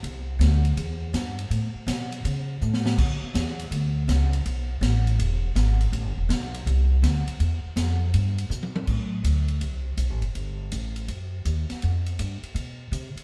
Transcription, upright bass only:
X:1
M:4/4
L:1/8
Q:"Swing" 1/4=163
K:Am
V:1 name="Upright bass" clef=bass
C,,2 D,,2 E,,2 G,,2 | A,, z B,,2 ^C,2 A,,2 | D,, z E,,2 D,,2 ^C,,2 | B,,,2 A,,,2 E,,,2 ^G,,,2 |
(3A,,, G,,, E,,, B,,,2 C,,2 D,, z | E,, z F,,2 G,,2 B,,2 | A,,2 D,,2 C,,2 (3B,,, A,,, G,,, | G,,,2 A,,,2 ^F,,2 ^D,, z |
F,,2 G,, z B,,2 C, z |]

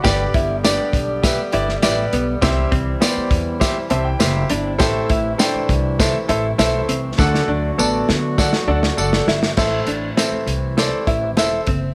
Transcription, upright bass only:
X:1
M:4/4
L:1/8
Q:1/4=101
K:Ador
V:1 name="Upright bass" clef=bass
G,,, G,,,2 B,,,2 G,,, A,,, B,,, | C,, C,, z E,,2 C,, F,,, G,,, | A,,, A,,, z C,,2 A,,, B,,, C,, | D,, D,, A,,, D,2 D,, F,,, G,,, |
A,,, A,,, z C,,2 A,,, E,,, F,,, |]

